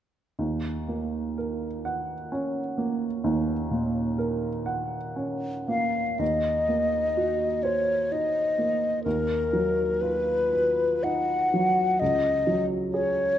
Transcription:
0.39 D#2
0.88 A#3
1.38 A#4
1.85 F#5
2.32 C#4
2.78 A#3
3.24 D#2
3.71 A#2
4.18 A#4
4.66 F#5
5.16 C#4
5.68 A#3 F5
6.19 D#2 D#5
6.69 A#3
7.17 F#4
7.63 C5 C#5
8.12 D#4 D#5
8.58 A#3
9.04 D#2 A#4
9.53 F#3
10.01 F4 B4
10.53 B4
11.04 D#4 F#5
11.54 F#3
12.00 C#2 D#5
12.47 F#3
12.93 G#4 C#5

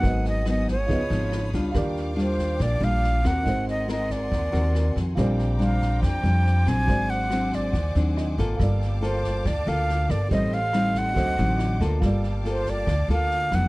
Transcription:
Already playing: F#3 B3 D#4 F#5
0.00 G#1 G#2 F#4 A#4 B4 G#5, kick, snare
0.05 D#5 F#5 D#6
0.24 snare
0.29 D#5
0.45 F#3 B3 D#4 D#5, cross-stick, snare
0.68 C#5, kick, snare
0.86 C#2 C#3 F3 B3 D#4 F4 G#4 C#5 F5, kick, snare
0.90 B4 D#5 B5
1.10 G#1 F3 B3 D#4, snare
1.32 cross-stick, snare
1.53 C#2 G3 D4 F4, kick, snare
1.71 D#2 D#3 D4 F4 G4 A#4 G5 D6, kick, cross-stick, snare
1.78 D5
1.96 snare
2.16 G3 D4 F4, snare
2.20 C5
2.39 kick, snare
2.59 A#1 A#2 D5, kick, cross-stick, snare
2.80 A#1 G3 D4 F4, snare
2.84 F5
3.03 snare
3.24 D#2 C4 F#4 A#4 F#5, kick, cross-stick, snare
3.43 G#1 G#3 D#4 F#4 A#4 F#5 G#5 C6, kick, snare
3.49 C5
3.67 D#5, snare
3.88 C4 F#4 A#4 D#5, cross-stick, snare
4.10 D5, kick, snare
4.31 D#2 D#3, kick, snare
4.52 D#2 C4 F#4 A#4, snare
4.75 cross-stick, snare
4.96 F2, kick, snare
5.15 A#1 A#2 G3 C4 D4 F4 G4 C5 G5 A#5 D6, kick, cross-stick, snare
5.21 D5
5.38 snare
5.59 G3 C4 D4 F5, snare
5.81 kick, snare
6.01 F2 F3 G5, kick, cross-stick, snare
6.22 F2 G3 C4 D4, snare
6.46 snare
6.66 A#1 F#3 C4 D4 G#5, kick, cross-stick, snare
6.87 G#1 G#2 F#4 C5 F#5 G#5, kick, snare
6.91 D5
7.10 F#5, snare
7.30 F#3 C4 D4, cross-stick, snare
7.52 D5, kick, snare
7.73 D#2 D#3, kick, snare
7.95 D#2 F#3 C4 D4, snare
8.17 D#5, cross-stick, snare
8.38 G#1 A#3 F4 A4, kick, snare
8.57 G1 G3 F4 A4 F5 G5 A5 D6, kick, cross-stick, snare
8.63 D5
8.81 snare
9.02 A#3 F4 A4 C5, snare
9.24 kick, snare
9.44 D2 D3 D5, kick, cross-stick, snare
9.67 D2 A#3 F4 A4 F5, snare
9.89 snare
10.09 G1 F4 A4 A#4 D5, kick, cross-stick, snare
10.29 A1 A2 G3 C4 D#4 G4 A4 C5 D#5 G5 C6, kick, snare
10.35 D#5
10.52 F5, snare
10.73 G3 C4 D#4, cross-stick, snare
10.95 F#5, kick, snare
11.13 D2 D3 F#3 C4 D#4 F#4 A4 C5 D6, kick, snare
11.17 D#5 F#5
11.38 A1 F#3 C4 D#4, snare
11.59 cross-stick, snare
11.80 D2 A#3 F4 A4, kick, snare
12.00 G1 G3 F4 A4 F5 G5 A5 D6, kick, cross-stick, snare
12.06 D5
12.23 snare
12.45 A#3 F4 A4, snare
12.50 C5
12.66 D5, kick, snare
12.87 D2 D3, kick, cross-stick, snare
13.08 D2 A#3 F4 A4 F5, snare
13.30 snare
13.51 F1 F#3 B3 D#4 F#5, kick, cross-stick, snare

